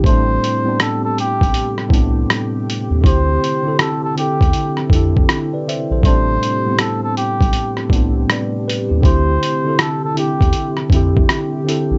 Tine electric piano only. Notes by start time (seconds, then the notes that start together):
0.03 A2 G3 A3 C4
0.09 D4
0.64 A2 G3 B3 C4
0.68 D4
1.89 A2 G3 B3
1.93 C4 D4
3.01 D3 C4 E4
3.07 G4
3.63 D3 C4 E4
3.68 A4
4.15 D3 C4 E4
4.20 A4
4.91 D3 C4 E4
4.96 A4
5.53 B4 D5
5.68 C5 E5
5.92 A4 C5
6.02 A2 G3 A3 C4
6.07 D4
6.65 A2 G3 B3 C4
6.70 E4
7.90 A2 G3 B3 C4
7.96 D4
8.31 B4 D5
8.68 G4 B4
8.89 E4 G4
9.00 D3 C4 E4
9.05 G4
9.64 D3 C4 E4
9.69 A4
10.14 D3 C4 E4
10.19 G4
10.91 D3 C4 E4
10.96 G4
11.64 D3 C4 E4
11.70 A4